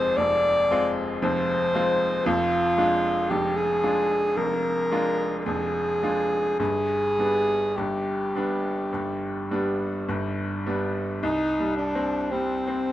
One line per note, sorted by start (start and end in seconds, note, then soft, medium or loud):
0.00 0.18 F1 medium
0.00 0.18 F2 medium
0.00 0.71 G#3 medium
0.00 0.71 C4 medium
0.00 0.72 F4 medium
0.00 0.19 C5 loud
0.17 0.69 F1 medium
0.17 0.69 F2 medium
0.17 0.96 D5 loud
0.71 1.19 G#3 medium
0.71 1.19 C4 medium
0.71 1.19 F4 medium
1.22 1.72 F1 medium
1.22 1.72 F2 medium
1.22 2.28 C5 medium
1.75 2.22 G#3 medium
1.75 2.22 C4 medium
1.75 2.23 F4 medium
2.26 2.77 F1 medium
2.26 2.77 F2 medium
2.26 3.31 F4 loud
2.78 3.26 G#3 medium
2.78 3.27 D4 medium
2.78 3.27 F4 medium
3.30 3.82 F1 medium
3.30 3.82 F2 medium
3.30 3.58 G4 medium
3.57 4.38 G#4 medium
3.83 4.33 G#3 soft
3.83 4.33 D4 medium
3.83 4.33 F4 soft
4.37 4.90 F1 medium
4.37 4.90 F2 medium
4.37 5.39 A#4 medium
4.92 5.42 G#3 medium
4.92 5.43 D4 medium
4.92 5.43 F4 medium
5.39 5.46 A#4 medium
5.45 6.01 F1 medium
5.45 6.00 F2 medium
5.45 6.59 G#4 medium
6.03 6.56 G#3 soft
6.03 6.56 D4 soft
6.03 6.57 F4 medium
6.59 7.16 G1 soft
6.59 7.17 G2 medium
6.59 7.78 G#4 medium
7.19 7.73 G3 soft
7.19 7.73 B3 soft
7.19 7.73 D4 soft
7.76 8.34 G1 medium
7.76 8.34 G2 soft
7.76 10.08 G4 medium
8.36 8.89 G3 soft
8.36 8.90 B3 soft
8.36 8.90 D4 soft
8.93 9.49 G1 medium
8.93 9.49 G2 soft
9.51 10.05 G3 soft
9.51 10.05 B3 soft
9.51 10.05 D4 soft
10.08 10.64 G1 medium
10.08 10.64 G2 medium
10.66 11.19 G3 soft
10.66 11.18 B3 medium
10.66 11.19 D4 medium
11.23 12.92 C2 medium
11.23 11.73 D#4 medium
11.60 12.17 G3 medium
11.77 12.32 D4 medium
11.95 12.52 C4 medium
12.31 12.88 G3 medium
12.31 12.92 C4 medium
12.68 12.92 C4 medium